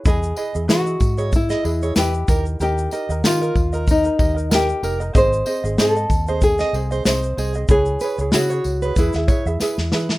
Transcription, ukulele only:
X:1
M:4/4
L:1/16
Q:"Swing 16ths" 1/4=94
K:E
V:1 name="Ukulele"
[EGBd]2 [EGBd] [EGd] [EGBd] [EGd]2 [EGd]2 [EGd] [EGBd] [EGd] [EBd]2 [D=G^Ad]2 | [D=G^Ad]2 [DGAd] [DAd] [DGAd] [DAd]2 [DAd]2 [DAd] [DGAd] [DAd] [DGAd]2 [DGAd] [DAd] | [^B,G^Bd]2 [B,GBd] [B,Gd] [B,GBd] [B,d]2 [B,Gd]2 [B,Gd] [B,GBd] [B,Gd] [B,GBd]2 [B,GBd] [B,Gd] | [EGBc]2 [EGBc] [EGc] [EGBc] [EGc]2 [EGc] [EGBe] [EGe] [EGBe] [EGe] [EGBe]2 [EGBe]2 |]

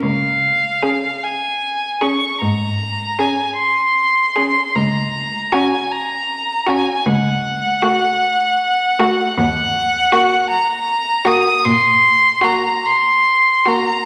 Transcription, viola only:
X:1
M:12/8
L:1/8
Q:3/8=51
K:Db
V:1 name="Viola"
z2 D z2 D z2 D z2 D | z2 D z2 D z2 =A, z2 A, | [K:Ebdor] z2 B, z2 B, z2 B, z2 B, |]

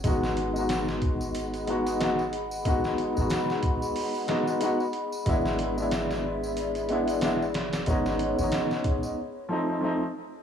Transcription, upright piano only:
X:1
M:4/4
L:1/16
Q:"Swing 16ths" 1/4=92
K:E
V:1 name="Upright piano"
[G,B,DF]3 [G,B,DF]6- [G,B,DF] [G,B,DF]2 [G,B,DF] z3 | [G,B,DF]3 [G,B,DF]6- [G,B,DF] [G,B,DF]2 [G,B,DF] z3 | [G,B,=DE]3 [G,B,DE]6- [G,B,DE] [G,B,DE]2 [G,B,DE] z3 | [G,B,CD]3 [G,B,CD]4- [G,B,CD] z2 [=F,A,=C_E]2 [F,A,CE] z3 |]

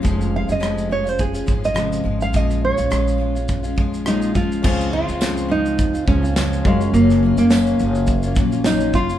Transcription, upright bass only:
X:1
M:4/4
L:1/16
Q:"Swing 16ths" 1/4=105
K:Db
V:1 name="Upright bass" clef=bass
F,,,3 F,,,6- F,,, A,,,4 A,,,2 | B,,,3 B,,, B,,,12 | D,,3 D,,6- D,, D,,4 G,,,2 | G,,,3 G,,,3 G,,,4 B,,,4 G,,,2 |]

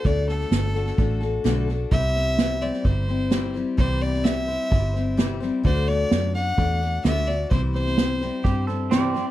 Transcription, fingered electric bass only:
X:1
M:4/4
L:1/8
Q:1/4=129
K:Clyd
V:1 name="Fingered electric bass" clef=bass
D,,2 G,,,2 A,,,2 B,,,2 | C,,4 G,,,4 | C,,4 G,,,4 | D,,2 F,,2 E,,2 D,,2 |
C,,4 G,,4 |]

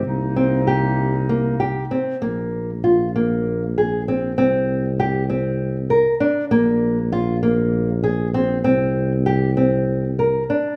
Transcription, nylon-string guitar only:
X:1
M:7/8
L:1/8
Q:1/4=98
K:Bbmix
V:1 name="Nylon-string guitar"
z C G2 B, G C | B,2 F B,2 A C | C2 G C2 B D | B,2 F B,2 A C |
C2 G C2 B D |]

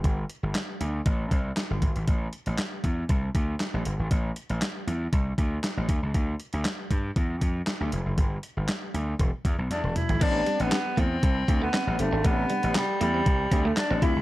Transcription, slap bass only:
X:1
M:4/4
L:1/16
Q:1/4=118
K:Am
V:1 name="Slap bass" clef=bass
G,,,2 z G,,, z2 D,,2 A,,,2 C,,2 z G,,, G,,, ^G,,, | A,,,2 z A,,, z2 E,,2 C,,2 D,,2 z A,,, G,,, ^G,,, | A,,,2 z A,,, z2 E,,2 C,,2 D,,2 z A,,, D,, ^C,, | D,,2 z D,, z2 G,,2 E,,2 F,,2 z D,, F,,, ^F,,, |
G,,,2 z G,,, z2 D,,2 E,,, z E,, B,,, E,, E,,, z ^G,,, | A,,,2 z A,,, z2 E,,2 C,,2 D,,2 z A,,, G,,, ^G,,, | A,,,2 z A,,, z2 E,,2 C,,2 D,,2 z A,,, D,, ^C,, |]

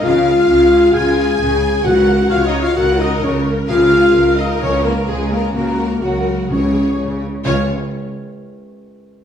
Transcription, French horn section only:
X:1
M:4/4
L:1/8
Q:1/4=130
K:Db
V:1 name="French horn section"
F4 A4 | G2 (3F E F G E D z | F3 E D B, A, B, | B,2 G,2 D3 z |
D z6 z |]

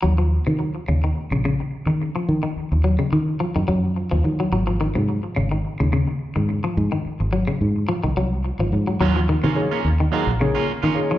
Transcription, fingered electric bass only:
X:1
M:4/4
L:1/16
Q:"Swing 16ths" 1/4=107
K:Ebdor
V:1 name="Fingered electric bass" clef=bass
E,,3 E,2 z E,,2 z B,,,2 z2 E,2 z | E, z2 E,,2 z E,2 z G,, G,,3 E,, E,2 | A,,,3 A,,2 z A,,,2 z E,,2 z2 A,,2 z | A,, z2 A,,,2 z A,,2 z C,, C,,3 A,,, A,,2 |
E,,3 E,2 z E,,2 z B,,,2 z2 E,2 z |]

